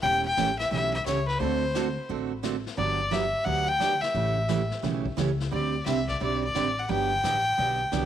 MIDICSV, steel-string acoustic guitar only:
0, 0, Header, 1, 2, 480
1, 0, Start_track
1, 0, Key_signature, 1, "major"
1, 0, Tempo, 343249
1, 41, Time_signature, 4, 2, 24, 8
1, 11263, End_track
2, 0, Start_track
2, 0, Title_t, "Steel-string acoustic guitar"
2, 0, Program_c, 0, 25
2, 31, Note_on_c, 0, 52, 52
2, 41, Note_on_c, 0, 57, 55
2, 43, Note_on_c, 0, 61, 60
2, 54, Note_on_c, 0, 67, 61
2, 346, Note_off_c, 0, 52, 0
2, 351, Note_off_c, 0, 57, 0
2, 352, Note_off_c, 0, 61, 0
2, 357, Note_off_c, 0, 67, 0
2, 518, Note_on_c, 0, 52, 73
2, 527, Note_on_c, 0, 57, 70
2, 531, Note_on_c, 0, 61, 82
2, 538, Note_on_c, 0, 67, 71
2, 684, Note_off_c, 0, 52, 0
2, 688, Note_off_c, 0, 57, 0
2, 690, Note_off_c, 0, 61, 0
2, 693, Note_off_c, 0, 67, 0
2, 993, Note_on_c, 0, 52, 62
2, 1005, Note_on_c, 0, 57, 56
2, 1010, Note_on_c, 0, 61, 57
2, 1016, Note_on_c, 0, 67, 52
2, 1308, Note_off_c, 0, 52, 0
2, 1314, Note_off_c, 0, 57, 0
2, 1316, Note_off_c, 0, 61, 0
2, 1319, Note_off_c, 0, 67, 0
2, 1487, Note_on_c, 0, 52, 74
2, 1488, Note_on_c, 0, 57, 78
2, 1496, Note_on_c, 0, 61, 80
2, 1500, Note_on_c, 0, 67, 74
2, 1648, Note_off_c, 0, 52, 0
2, 1649, Note_off_c, 0, 57, 0
2, 1653, Note_off_c, 0, 61, 0
2, 1655, Note_off_c, 0, 67, 0
2, 1954, Note_on_c, 0, 50, 52
2, 1965, Note_on_c, 0, 57, 61
2, 1971, Note_on_c, 0, 60, 56
2, 1971, Note_on_c, 0, 66, 59
2, 1978, Note_on_c, 0, 69, 61
2, 2268, Note_off_c, 0, 50, 0
2, 2273, Note_off_c, 0, 57, 0
2, 2276, Note_off_c, 0, 60, 0
2, 2276, Note_off_c, 0, 66, 0
2, 2280, Note_off_c, 0, 69, 0
2, 2441, Note_on_c, 0, 50, 69
2, 2449, Note_on_c, 0, 57, 67
2, 2454, Note_on_c, 0, 60, 70
2, 2460, Note_on_c, 0, 66, 76
2, 2466, Note_on_c, 0, 69, 80
2, 2605, Note_off_c, 0, 50, 0
2, 2609, Note_off_c, 0, 57, 0
2, 2612, Note_off_c, 0, 60, 0
2, 2615, Note_off_c, 0, 66, 0
2, 2618, Note_off_c, 0, 69, 0
2, 2921, Note_on_c, 0, 50, 49
2, 2929, Note_on_c, 0, 57, 53
2, 2930, Note_on_c, 0, 60, 56
2, 2935, Note_on_c, 0, 66, 57
2, 2945, Note_on_c, 0, 69, 55
2, 3231, Note_off_c, 0, 50, 0
2, 3235, Note_off_c, 0, 57, 0
2, 3236, Note_off_c, 0, 60, 0
2, 3238, Note_off_c, 0, 66, 0
2, 3243, Note_off_c, 0, 69, 0
2, 3395, Note_on_c, 0, 50, 62
2, 3400, Note_on_c, 0, 57, 68
2, 3403, Note_on_c, 0, 60, 74
2, 3409, Note_on_c, 0, 66, 74
2, 3415, Note_on_c, 0, 69, 67
2, 3562, Note_off_c, 0, 50, 0
2, 3565, Note_off_c, 0, 57, 0
2, 3567, Note_off_c, 0, 60, 0
2, 3570, Note_off_c, 0, 66, 0
2, 3572, Note_off_c, 0, 69, 0
2, 3874, Note_on_c, 0, 50, 55
2, 3880, Note_on_c, 0, 54, 57
2, 3888, Note_on_c, 0, 59, 57
2, 3890, Note_on_c, 0, 62, 55
2, 3896, Note_on_c, 0, 67, 60
2, 4188, Note_off_c, 0, 50, 0
2, 4191, Note_off_c, 0, 54, 0
2, 4195, Note_off_c, 0, 59, 0
2, 4196, Note_off_c, 0, 62, 0
2, 4199, Note_off_c, 0, 67, 0
2, 4345, Note_on_c, 0, 50, 59
2, 4350, Note_on_c, 0, 54, 72
2, 4360, Note_on_c, 0, 59, 67
2, 4362, Note_on_c, 0, 62, 73
2, 4368, Note_on_c, 0, 67, 72
2, 4517, Note_off_c, 0, 50, 0
2, 4520, Note_off_c, 0, 54, 0
2, 4525, Note_off_c, 0, 59, 0
2, 4526, Note_off_c, 0, 62, 0
2, 4529, Note_off_c, 0, 67, 0
2, 4825, Note_on_c, 0, 50, 55
2, 4836, Note_on_c, 0, 54, 53
2, 4838, Note_on_c, 0, 59, 53
2, 4842, Note_on_c, 0, 62, 58
2, 4845, Note_on_c, 0, 67, 50
2, 5144, Note_off_c, 0, 50, 0
2, 5149, Note_off_c, 0, 54, 0
2, 5150, Note_off_c, 0, 59, 0
2, 5152, Note_off_c, 0, 62, 0
2, 5153, Note_off_c, 0, 67, 0
2, 5307, Note_on_c, 0, 50, 65
2, 5315, Note_on_c, 0, 54, 79
2, 5317, Note_on_c, 0, 59, 66
2, 5318, Note_on_c, 0, 62, 81
2, 5326, Note_on_c, 0, 67, 76
2, 5479, Note_off_c, 0, 50, 0
2, 5483, Note_off_c, 0, 54, 0
2, 5484, Note_off_c, 0, 59, 0
2, 5484, Note_off_c, 0, 62, 0
2, 5488, Note_off_c, 0, 67, 0
2, 5789, Note_on_c, 0, 49, 50
2, 5799, Note_on_c, 0, 52, 62
2, 5799, Note_on_c, 0, 57, 59
2, 5801, Note_on_c, 0, 61, 53
2, 5810, Note_on_c, 0, 67, 61
2, 6105, Note_off_c, 0, 49, 0
2, 6110, Note_off_c, 0, 52, 0
2, 6110, Note_off_c, 0, 57, 0
2, 6111, Note_off_c, 0, 61, 0
2, 6116, Note_off_c, 0, 67, 0
2, 6268, Note_on_c, 0, 49, 62
2, 6276, Note_on_c, 0, 52, 77
2, 6278, Note_on_c, 0, 57, 68
2, 6286, Note_on_c, 0, 67, 74
2, 6287, Note_on_c, 0, 61, 69
2, 6439, Note_off_c, 0, 49, 0
2, 6443, Note_off_c, 0, 52, 0
2, 6444, Note_off_c, 0, 57, 0
2, 6448, Note_off_c, 0, 61, 0
2, 6448, Note_off_c, 0, 67, 0
2, 6746, Note_on_c, 0, 49, 58
2, 6753, Note_on_c, 0, 52, 49
2, 6758, Note_on_c, 0, 57, 51
2, 6761, Note_on_c, 0, 61, 57
2, 6766, Note_on_c, 0, 67, 58
2, 7064, Note_off_c, 0, 49, 0
2, 7067, Note_off_c, 0, 52, 0
2, 7070, Note_off_c, 0, 57, 0
2, 7071, Note_off_c, 0, 61, 0
2, 7074, Note_off_c, 0, 67, 0
2, 7226, Note_on_c, 0, 49, 69
2, 7231, Note_on_c, 0, 52, 71
2, 7241, Note_on_c, 0, 57, 69
2, 7243, Note_on_c, 0, 61, 82
2, 7248, Note_on_c, 0, 67, 77
2, 7397, Note_off_c, 0, 49, 0
2, 7400, Note_off_c, 0, 52, 0
2, 7405, Note_off_c, 0, 57, 0
2, 7406, Note_off_c, 0, 61, 0
2, 7409, Note_off_c, 0, 67, 0
2, 7706, Note_on_c, 0, 50, 57
2, 7713, Note_on_c, 0, 55, 55
2, 7722, Note_on_c, 0, 60, 52
2, 7722, Note_on_c, 0, 62, 64
2, 7727, Note_on_c, 0, 67, 62
2, 8023, Note_off_c, 0, 50, 0
2, 8027, Note_off_c, 0, 55, 0
2, 8031, Note_off_c, 0, 60, 0
2, 8031, Note_off_c, 0, 62, 0
2, 8034, Note_off_c, 0, 67, 0
2, 8194, Note_on_c, 0, 50, 69
2, 8200, Note_on_c, 0, 55, 75
2, 8205, Note_on_c, 0, 60, 81
2, 8212, Note_on_c, 0, 62, 75
2, 8217, Note_on_c, 0, 67, 72
2, 8361, Note_off_c, 0, 50, 0
2, 8364, Note_off_c, 0, 55, 0
2, 8367, Note_off_c, 0, 60, 0
2, 8370, Note_off_c, 0, 62, 0
2, 8372, Note_off_c, 0, 67, 0
2, 8676, Note_on_c, 0, 50, 52
2, 8680, Note_on_c, 0, 55, 56
2, 8686, Note_on_c, 0, 60, 54
2, 8695, Note_on_c, 0, 62, 62
2, 8699, Note_on_c, 0, 67, 54
2, 8988, Note_off_c, 0, 50, 0
2, 8990, Note_off_c, 0, 55, 0
2, 8993, Note_off_c, 0, 60, 0
2, 8997, Note_off_c, 0, 62, 0
2, 8999, Note_off_c, 0, 67, 0
2, 9154, Note_on_c, 0, 50, 63
2, 9166, Note_on_c, 0, 55, 65
2, 9167, Note_on_c, 0, 60, 77
2, 9173, Note_on_c, 0, 62, 76
2, 9178, Note_on_c, 0, 67, 69
2, 9321, Note_off_c, 0, 50, 0
2, 9327, Note_off_c, 0, 55, 0
2, 9327, Note_off_c, 0, 60, 0
2, 9330, Note_off_c, 0, 62, 0
2, 9333, Note_off_c, 0, 67, 0
2, 9633, Note_on_c, 0, 50, 52
2, 9636, Note_on_c, 0, 54, 61
2, 9646, Note_on_c, 0, 59, 60
2, 9653, Note_on_c, 0, 62, 58
2, 9653, Note_on_c, 0, 67, 63
2, 9946, Note_off_c, 0, 50, 0
2, 9948, Note_off_c, 0, 54, 0
2, 9953, Note_off_c, 0, 59, 0
2, 9956, Note_off_c, 0, 62, 0
2, 9956, Note_off_c, 0, 67, 0
2, 10115, Note_on_c, 0, 50, 77
2, 10123, Note_on_c, 0, 54, 74
2, 10129, Note_on_c, 0, 59, 74
2, 10131, Note_on_c, 0, 62, 78
2, 10134, Note_on_c, 0, 67, 76
2, 10281, Note_off_c, 0, 50, 0
2, 10285, Note_off_c, 0, 54, 0
2, 10288, Note_off_c, 0, 59, 0
2, 10289, Note_off_c, 0, 62, 0
2, 10290, Note_off_c, 0, 67, 0
2, 10596, Note_on_c, 0, 50, 54
2, 10597, Note_on_c, 0, 54, 55
2, 10605, Note_on_c, 0, 59, 56
2, 10607, Note_on_c, 0, 62, 57
2, 10611, Note_on_c, 0, 67, 55
2, 10908, Note_off_c, 0, 50, 0
2, 10908, Note_off_c, 0, 54, 0
2, 10912, Note_off_c, 0, 59, 0
2, 10913, Note_off_c, 0, 62, 0
2, 10915, Note_off_c, 0, 67, 0
2, 11074, Note_on_c, 0, 50, 73
2, 11081, Note_on_c, 0, 54, 59
2, 11087, Note_on_c, 0, 59, 71
2, 11087, Note_on_c, 0, 62, 65
2, 11089, Note_on_c, 0, 67, 74
2, 11240, Note_off_c, 0, 50, 0
2, 11244, Note_off_c, 0, 54, 0
2, 11247, Note_off_c, 0, 59, 0
2, 11247, Note_off_c, 0, 62, 0
2, 11248, Note_off_c, 0, 67, 0
2, 11263, End_track
0, 0, End_of_file